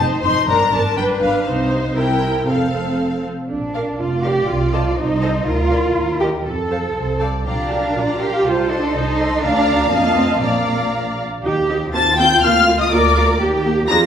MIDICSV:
0, 0, Header, 1, 6, 480
1, 0, Start_track
1, 0, Key_signature, -2, "major"
1, 0, Tempo, 490196
1, 463, Time_signature, 2, 2, 24, 8
1, 1425, Tempo, 505476
1, 4305, Tempo, 493827
1, 9585, Tempo, 508475
1, 11025, Tempo, 488202
1, 13595, End_track
2, 0, Start_track
2, 0, Title_t, "Violin section"
2, 0, Program_c, 0, 48
2, 0, Note_on_c, 0, 72, 70
2, 455, Note_off_c, 0, 72, 0
2, 469, Note_on_c, 0, 70, 66
2, 936, Note_off_c, 0, 70, 0
2, 951, Note_on_c, 0, 71, 68
2, 1429, Note_off_c, 0, 71, 0
2, 1435, Note_on_c, 0, 72, 66
2, 1897, Note_off_c, 0, 72, 0
2, 1907, Note_on_c, 0, 70, 53
2, 2387, Note_on_c, 0, 69, 45
2, 2388, Note_off_c, 0, 70, 0
2, 3122, Note_off_c, 0, 69, 0
2, 3601, Note_on_c, 0, 77, 35
2, 3604, Note_off_c, 0, 77, 0
2, 3604, Note_on_c, 0, 77, 32
2, 3678, Note_off_c, 0, 77, 0
2, 4067, Note_on_c, 0, 77, 41
2, 4069, Note_off_c, 0, 77, 0
2, 4069, Note_on_c, 0, 77, 38
2, 4144, Note_off_c, 0, 77, 0
2, 4538, Note_on_c, 0, 75, 42
2, 4538, Note_on_c, 0, 81, 44
2, 4614, Note_off_c, 0, 81, 0
2, 4615, Note_off_c, 0, 75, 0
2, 5009, Note_on_c, 0, 75, 48
2, 5009, Note_on_c, 0, 81, 49
2, 5085, Note_off_c, 0, 81, 0
2, 5086, Note_off_c, 0, 75, 0
2, 5489, Note_on_c, 0, 77, 40
2, 5491, Note_on_c, 0, 74, 40
2, 5567, Note_off_c, 0, 77, 0
2, 5568, Note_off_c, 0, 74, 0
2, 5970, Note_on_c, 0, 79, 35
2, 5971, Note_off_c, 0, 79, 0
2, 5971, Note_on_c, 0, 79, 35
2, 6049, Note_off_c, 0, 79, 0
2, 6466, Note_on_c, 0, 81, 29
2, 6467, Note_on_c, 0, 77, 31
2, 6544, Note_off_c, 0, 77, 0
2, 6544, Note_off_c, 0, 81, 0
2, 6951, Note_on_c, 0, 77, 33
2, 6952, Note_on_c, 0, 81, 31
2, 7029, Note_off_c, 0, 77, 0
2, 7030, Note_off_c, 0, 81, 0
2, 7196, Note_on_c, 0, 77, 41
2, 7196, Note_on_c, 0, 82, 40
2, 7423, Note_off_c, 0, 77, 0
2, 7423, Note_off_c, 0, 82, 0
2, 7444, Note_on_c, 0, 77, 36
2, 7444, Note_on_c, 0, 82, 34
2, 7674, Note_off_c, 0, 77, 0
2, 7674, Note_off_c, 0, 82, 0
2, 7685, Note_on_c, 0, 77, 40
2, 7686, Note_on_c, 0, 82, 40
2, 7919, Note_off_c, 0, 77, 0
2, 7919, Note_off_c, 0, 82, 0
2, 7930, Note_on_c, 0, 77, 37
2, 7931, Note_on_c, 0, 82, 40
2, 8163, Note_on_c, 0, 72, 46
2, 8165, Note_on_c, 0, 81, 48
2, 8168, Note_off_c, 0, 77, 0
2, 8168, Note_off_c, 0, 82, 0
2, 8385, Note_off_c, 0, 72, 0
2, 8387, Note_off_c, 0, 81, 0
2, 8401, Note_on_c, 0, 84, 43
2, 8403, Note_on_c, 0, 75, 42
2, 8638, Note_off_c, 0, 75, 0
2, 8638, Note_off_c, 0, 84, 0
2, 8639, Note_on_c, 0, 72, 50
2, 8641, Note_on_c, 0, 81, 52
2, 8872, Note_off_c, 0, 72, 0
2, 8873, Note_off_c, 0, 81, 0
2, 8878, Note_on_c, 0, 75, 50
2, 8879, Note_on_c, 0, 84, 52
2, 9108, Note_on_c, 0, 77, 65
2, 9109, Note_on_c, 0, 82, 65
2, 9111, Note_off_c, 0, 75, 0
2, 9111, Note_off_c, 0, 84, 0
2, 9553, Note_off_c, 0, 77, 0
2, 9553, Note_off_c, 0, 82, 0
2, 9587, Note_on_c, 0, 77, 66
2, 9587, Note_on_c, 0, 81, 65
2, 10050, Note_off_c, 0, 77, 0
2, 10061, Note_on_c, 0, 77, 51
2, 10061, Note_on_c, 0, 82, 53
2, 10063, Note_off_c, 0, 81, 0
2, 10819, Note_off_c, 0, 77, 0
2, 10834, Note_off_c, 0, 82, 0
2, 11513, Note_on_c, 0, 81, 83
2, 11735, Note_off_c, 0, 81, 0
2, 11745, Note_on_c, 0, 79, 77
2, 11984, Note_off_c, 0, 79, 0
2, 11990, Note_on_c, 0, 77, 82
2, 12344, Note_off_c, 0, 77, 0
2, 12353, Note_on_c, 0, 75, 68
2, 12470, Note_off_c, 0, 75, 0
2, 12472, Note_on_c, 0, 74, 71
2, 12942, Note_off_c, 0, 74, 0
2, 13422, Note_on_c, 0, 82, 89
2, 13501, Note_off_c, 0, 82, 0
2, 13595, End_track
3, 0, Start_track
3, 0, Title_t, "Violin section"
3, 0, Program_c, 1, 48
3, 233, Note_on_c, 1, 84, 85
3, 463, Note_off_c, 1, 84, 0
3, 474, Note_on_c, 1, 82, 79
3, 704, Note_off_c, 1, 82, 0
3, 713, Note_on_c, 1, 81, 80
3, 947, Note_off_c, 1, 81, 0
3, 951, Note_on_c, 1, 79, 67
3, 1030, Note_off_c, 1, 79, 0
3, 1182, Note_on_c, 1, 77, 63
3, 1420, Note_off_c, 1, 77, 0
3, 1907, Note_on_c, 1, 79, 64
3, 2355, Note_off_c, 1, 79, 0
3, 2396, Note_on_c, 1, 77, 55
3, 3112, Note_off_c, 1, 77, 0
3, 3839, Note_on_c, 1, 74, 50
3, 4742, Note_off_c, 1, 74, 0
3, 4773, Note_on_c, 1, 72, 58
3, 5248, Note_off_c, 1, 72, 0
3, 5256, Note_on_c, 1, 70, 58
3, 5727, Note_off_c, 1, 70, 0
3, 5743, Note_on_c, 1, 70, 50
3, 6215, Note_off_c, 1, 70, 0
3, 6227, Note_on_c, 1, 69, 40
3, 6663, Note_off_c, 1, 69, 0
3, 6714, Note_on_c, 1, 72, 41
3, 6939, Note_off_c, 1, 72, 0
3, 6951, Note_on_c, 1, 74, 43
3, 7197, Note_off_c, 1, 74, 0
3, 7205, Note_on_c, 1, 67, 45
3, 7654, Note_off_c, 1, 67, 0
3, 7698, Note_on_c, 1, 65, 42
3, 8168, Note_on_c, 1, 69, 55
3, 8172, Note_off_c, 1, 65, 0
3, 9109, Note_off_c, 1, 69, 0
3, 9110, Note_on_c, 1, 77, 76
3, 10045, Note_off_c, 1, 77, 0
3, 10067, Note_on_c, 1, 74, 57
3, 10776, Note_off_c, 1, 74, 0
3, 11517, Note_on_c, 1, 93, 84
3, 11738, Note_off_c, 1, 93, 0
3, 11761, Note_on_c, 1, 91, 93
3, 11987, Note_on_c, 1, 89, 91
3, 11992, Note_off_c, 1, 91, 0
3, 12342, Note_off_c, 1, 89, 0
3, 12357, Note_on_c, 1, 87, 82
3, 12472, Note_off_c, 1, 87, 0
3, 12475, Note_on_c, 1, 86, 83
3, 12953, Note_off_c, 1, 86, 0
3, 13428, Note_on_c, 1, 94, 97
3, 13595, Note_off_c, 1, 94, 0
3, 13595, End_track
4, 0, Start_track
4, 0, Title_t, "Viola section"
4, 0, Program_c, 2, 48
4, 0, Note_on_c, 2, 63, 56
4, 0, Note_on_c, 2, 72, 59
4, 218, Note_off_c, 2, 72, 0
4, 220, Note_off_c, 2, 63, 0
4, 230, Note_on_c, 2, 72, 56
4, 232, Note_on_c, 2, 63, 57
4, 461, Note_off_c, 2, 72, 0
4, 462, Note_off_c, 2, 63, 0
4, 467, Note_on_c, 2, 70, 52
4, 469, Note_on_c, 2, 62, 56
4, 695, Note_off_c, 2, 70, 0
4, 696, Note_off_c, 2, 62, 0
4, 707, Note_on_c, 2, 70, 54
4, 708, Note_on_c, 2, 62, 49
4, 930, Note_off_c, 2, 62, 0
4, 940, Note_off_c, 2, 70, 0
4, 942, Note_on_c, 2, 62, 53
4, 942, Note_on_c, 2, 71, 54
4, 1173, Note_off_c, 2, 62, 0
4, 1174, Note_off_c, 2, 71, 0
4, 1184, Note_on_c, 2, 62, 52
4, 1186, Note_on_c, 2, 71, 50
4, 1421, Note_off_c, 2, 62, 0
4, 1421, Note_off_c, 2, 71, 0
4, 1431, Note_on_c, 2, 63, 54
4, 1432, Note_on_c, 2, 72, 50
4, 1871, Note_off_c, 2, 63, 0
4, 1872, Note_off_c, 2, 72, 0
4, 1900, Note_on_c, 2, 64, 48
4, 1900, Note_on_c, 2, 70, 47
4, 2385, Note_off_c, 2, 64, 0
4, 2385, Note_off_c, 2, 70, 0
4, 2385, Note_on_c, 2, 60, 40
4, 2386, Note_on_c, 2, 69, 41
4, 3153, Note_off_c, 2, 60, 0
4, 3153, Note_off_c, 2, 69, 0
4, 3599, Note_on_c, 2, 70, 37
4, 3599, Note_on_c, 2, 74, 36
4, 3674, Note_off_c, 2, 74, 0
4, 3675, Note_off_c, 2, 70, 0
4, 4072, Note_on_c, 2, 74, 41
4, 4073, Note_on_c, 2, 70, 43
4, 4147, Note_off_c, 2, 70, 0
4, 4147, Note_off_c, 2, 74, 0
4, 4542, Note_on_c, 2, 72, 47
4, 4544, Note_on_c, 2, 69, 47
4, 4617, Note_off_c, 2, 72, 0
4, 4619, Note_off_c, 2, 69, 0
4, 5014, Note_on_c, 2, 69, 53
4, 5016, Note_on_c, 2, 72, 50
4, 5090, Note_off_c, 2, 69, 0
4, 5091, Note_off_c, 2, 72, 0
4, 5490, Note_on_c, 2, 70, 47
4, 5491, Note_off_c, 2, 70, 0
4, 5491, Note_on_c, 2, 70, 46
4, 5568, Note_off_c, 2, 70, 0
4, 5972, Note_on_c, 2, 70, 40
4, 5972, Note_on_c, 2, 75, 38
4, 6050, Note_off_c, 2, 70, 0
4, 6050, Note_off_c, 2, 75, 0
4, 6461, Note_on_c, 2, 69, 33
4, 6462, Note_on_c, 2, 72, 33
4, 6539, Note_off_c, 2, 69, 0
4, 6539, Note_off_c, 2, 72, 0
4, 6947, Note_on_c, 2, 72, 34
4, 6948, Note_on_c, 2, 69, 34
4, 7025, Note_off_c, 2, 69, 0
4, 7025, Note_off_c, 2, 72, 0
4, 7201, Note_on_c, 2, 65, 40
4, 7203, Note_on_c, 2, 74, 40
4, 7426, Note_off_c, 2, 65, 0
4, 7427, Note_off_c, 2, 74, 0
4, 7438, Note_on_c, 2, 70, 39
4, 7439, Note_on_c, 2, 77, 37
4, 7680, Note_on_c, 2, 65, 42
4, 7680, Note_on_c, 2, 74, 40
4, 7682, Note_off_c, 2, 70, 0
4, 7683, Note_off_c, 2, 77, 0
4, 7924, Note_off_c, 2, 65, 0
4, 7924, Note_off_c, 2, 74, 0
4, 7925, Note_on_c, 2, 77, 43
4, 7926, Note_on_c, 2, 70, 39
4, 8164, Note_on_c, 2, 72, 44
4, 8165, Note_off_c, 2, 77, 0
4, 8166, Note_off_c, 2, 70, 0
4, 8166, Note_off_c, 2, 72, 0
4, 8166, Note_on_c, 2, 72, 45
4, 8387, Note_off_c, 2, 72, 0
4, 8400, Note_on_c, 2, 69, 44
4, 8402, Note_off_c, 2, 69, 0
4, 8402, Note_on_c, 2, 69, 47
4, 8638, Note_off_c, 2, 69, 0
4, 8640, Note_on_c, 2, 72, 52
4, 8642, Note_off_c, 2, 72, 0
4, 8642, Note_on_c, 2, 72, 52
4, 8874, Note_off_c, 2, 72, 0
4, 8874, Note_on_c, 2, 69, 54
4, 8878, Note_off_c, 2, 69, 0
4, 8878, Note_on_c, 2, 69, 53
4, 9110, Note_off_c, 2, 69, 0
4, 9112, Note_on_c, 2, 74, 60
4, 9114, Note_on_c, 2, 77, 61
4, 9555, Note_off_c, 2, 74, 0
4, 9556, Note_off_c, 2, 77, 0
4, 9588, Note_on_c, 2, 75, 65
4, 9588, Note_on_c, 2, 77, 61
4, 10054, Note_off_c, 2, 75, 0
4, 10054, Note_off_c, 2, 77, 0
4, 10066, Note_on_c, 2, 74, 49
4, 10066, Note_on_c, 2, 77, 51
4, 10821, Note_off_c, 2, 74, 0
4, 10821, Note_off_c, 2, 77, 0
4, 11028, Note_on_c, 2, 63, 60
4, 11028, Note_on_c, 2, 67, 62
4, 11106, Note_off_c, 2, 67, 0
4, 11107, Note_off_c, 2, 63, 0
4, 11268, Note_on_c, 2, 67, 55
4, 11270, Note_on_c, 2, 63, 55
4, 11347, Note_off_c, 2, 67, 0
4, 11348, Note_off_c, 2, 63, 0
4, 11511, Note_on_c, 2, 60, 59
4, 11511, Note_on_c, 2, 65, 55
4, 11590, Note_off_c, 2, 60, 0
4, 11590, Note_off_c, 2, 65, 0
4, 11748, Note_on_c, 2, 60, 59
4, 11750, Note_on_c, 2, 65, 59
4, 11826, Note_off_c, 2, 60, 0
4, 11829, Note_off_c, 2, 65, 0
4, 11995, Note_on_c, 2, 58, 65
4, 11995, Note_on_c, 2, 65, 65
4, 12073, Note_off_c, 2, 65, 0
4, 12074, Note_off_c, 2, 58, 0
4, 12238, Note_on_c, 2, 58, 60
4, 12238, Note_on_c, 2, 65, 63
4, 12316, Note_off_c, 2, 58, 0
4, 12316, Note_off_c, 2, 65, 0
4, 12474, Note_on_c, 2, 58, 62
4, 12475, Note_on_c, 2, 65, 63
4, 12553, Note_off_c, 2, 58, 0
4, 12553, Note_off_c, 2, 65, 0
4, 12712, Note_on_c, 2, 58, 65
4, 12715, Note_on_c, 2, 65, 63
4, 12791, Note_off_c, 2, 58, 0
4, 12793, Note_off_c, 2, 65, 0
4, 12954, Note_on_c, 2, 58, 62
4, 12956, Note_on_c, 2, 67, 67
4, 13032, Note_off_c, 2, 58, 0
4, 13035, Note_off_c, 2, 67, 0
4, 13187, Note_on_c, 2, 67, 64
4, 13192, Note_on_c, 2, 58, 67
4, 13266, Note_off_c, 2, 67, 0
4, 13271, Note_off_c, 2, 58, 0
4, 13432, Note_on_c, 2, 62, 66
4, 13433, Note_on_c, 2, 68, 67
4, 13511, Note_off_c, 2, 62, 0
4, 13511, Note_off_c, 2, 68, 0
4, 13595, End_track
5, 0, Start_track
5, 0, Title_t, "Cello section"
5, 0, Program_c, 3, 48
5, 228, Note_on_c, 3, 41, 56
5, 306, Note_off_c, 3, 41, 0
5, 465, Note_on_c, 3, 43, 64
5, 543, Note_off_c, 3, 43, 0
5, 706, Note_on_c, 3, 43, 59
5, 785, Note_off_c, 3, 43, 0
5, 944, Note_on_c, 3, 43, 57
5, 1023, Note_off_c, 3, 43, 0
5, 1182, Note_on_c, 3, 43, 53
5, 1261, Note_off_c, 3, 43, 0
5, 1427, Note_on_c, 3, 48, 52
5, 1869, Note_off_c, 3, 48, 0
5, 1902, Note_on_c, 3, 48, 48
5, 2376, Note_off_c, 3, 48, 0
5, 2384, Note_on_c, 3, 41, 42
5, 3168, Note_off_c, 3, 41, 0
5, 3359, Note_on_c, 3, 62, 50
5, 3800, Note_off_c, 3, 62, 0
5, 3832, Note_on_c, 3, 65, 53
5, 4069, Note_off_c, 3, 65, 0
5, 4069, Note_on_c, 3, 67, 61
5, 4302, Note_on_c, 3, 65, 56
5, 4305, Note_off_c, 3, 67, 0
5, 4774, Note_on_c, 3, 63, 73
5, 4776, Note_off_c, 3, 65, 0
5, 5239, Note_off_c, 3, 63, 0
5, 5248, Note_on_c, 3, 65, 76
5, 5968, Note_on_c, 3, 67, 54
5, 5974, Note_off_c, 3, 65, 0
5, 6046, Note_off_c, 3, 67, 0
5, 6214, Note_on_c, 3, 69, 53
5, 6936, Note_off_c, 3, 69, 0
5, 7196, Note_on_c, 3, 62, 61
5, 7886, Note_off_c, 3, 62, 0
5, 7919, Note_on_c, 3, 67, 65
5, 8162, Note_off_c, 3, 67, 0
5, 8162, Note_on_c, 3, 65, 62
5, 8399, Note_on_c, 3, 62, 72
5, 8402, Note_off_c, 3, 65, 0
5, 8635, Note_on_c, 3, 63, 76
5, 8636, Note_off_c, 3, 62, 0
5, 9096, Note_off_c, 3, 63, 0
5, 9106, Note_on_c, 3, 62, 85
5, 9585, Note_off_c, 3, 62, 0
5, 9585, Note_on_c, 3, 58, 82
5, 9817, Note_off_c, 3, 58, 0
5, 9819, Note_on_c, 3, 60, 73
5, 10061, Note_off_c, 3, 60, 0
5, 10062, Note_on_c, 3, 58, 61
5, 10546, Note_off_c, 3, 58, 0
5, 11026, Note_on_c, 3, 67, 74
5, 11477, Note_off_c, 3, 67, 0
5, 11512, Note_on_c, 3, 65, 68
5, 12454, Note_off_c, 3, 65, 0
5, 12468, Note_on_c, 3, 70, 72
5, 12940, Note_off_c, 3, 70, 0
5, 12948, Note_on_c, 3, 67, 74
5, 13416, Note_off_c, 3, 67, 0
5, 13426, Note_on_c, 3, 65, 77
5, 13595, Note_off_c, 3, 65, 0
5, 13595, End_track
6, 0, Start_track
6, 0, Title_t, "Double bass section"
6, 0, Program_c, 4, 48
6, 228, Note_on_c, 4, 29, 58
6, 306, Note_off_c, 4, 29, 0
6, 470, Note_on_c, 4, 31, 63
6, 548, Note_off_c, 4, 31, 0
6, 708, Note_on_c, 4, 31, 57
6, 787, Note_off_c, 4, 31, 0
6, 946, Note_on_c, 4, 31, 59
6, 1025, Note_off_c, 4, 31, 0
6, 1188, Note_on_c, 4, 31, 50
6, 1266, Note_off_c, 4, 31, 0
6, 1430, Note_on_c, 4, 36, 60
6, 1870, Note_off_c, 4, 36, 0
6, 1904, Note_on_c, 4, 36, 54
6, 2377, Note_off_c, 4, 36, 0
6, 2388, Note_on_c, 4, 29, 46
6, 3170, Note_off_c, 4, 29, 0
6, 3362, Note_on_c, 4, 34, 43
6, 3755, Note_off_c, 4, 34, 0
6, 3833, Note_on_c, 4, 29, 50
6, 4227, Note_off_c, 4, 29, 0
6, 4306, Note_on_c, 4, 36, 56
6, 4700, Note_off_c, 4, 36, 0
6, 4779, Note_on_c, 4, 36, 61
6, 5171, Note_off_c, 4, 36, 0
6, 5249, Note_on_c, 4, 38, 62
6, 5652, Note_off_c, 4, 38, 0
6, 5728, Note_on_c, 4, 39, 50
6, 6135, Note_off_c, 4, 39, 0
6, 6220, Note_on_c, 4, 41, 42
6, 6627, Note_off_c, 4, 41, 0
6, 6703, Note_on_c, 4, 36, 42
6, 7114, Note_off_c, 4, 36, 0
6, 7191, Note_on_c, 4, 34, 54
6, 7601, Note_off_c, 4, 34, 0
6, 7678, Note_on_c, 4, 34, 54
6, 8084, Note_off_c, 4, 34, 0
6, 8165, Note_on_c, 4, 36, 61
6, 8562, Note_off_c, 4, 36, 0
6, 8639, Note_on_c, 4, 36, 71
6, 9031, Note_off_c, 4, 36, 0
6, 9103, Note_on_c, 4, 38, 68
6, 9550, Note_off_c, 4, 38, 0
6, 9586, Note_on_c, 4, 41, 68
6, 10061, Note_on_c, 4, 34, 54
6, 10063, Note_off_c, 4, 41, 0
6, 10818, Note_off_c, 4, 34, 0
6, 11023, Note_on_c, 4, 39, 75
6, 11452, Note_off_c, 4, 39, 0
6, 11506, Note_on_c, 4, 39, 76
6, 11933, Note_off_c, 4, 39, 0
6, 11990, Note_on_c, 4, 38, 70
6, 12415, Note_off_c, 4, 38, 0
6, 12470, Note_on_c, 4, 38, 78
6, 12894, Note_off_c, 4, 38, 0
6, 12950, Note_on_c, 4, 39, 80
6, 13371, Note_off_c, 4, 39, 0
6, 13428, Note_on_c, 4, 41, 86
6, 13595, Note_off_c, 4, 41, 0
6, 13595, End_track
0, 0, End_of_file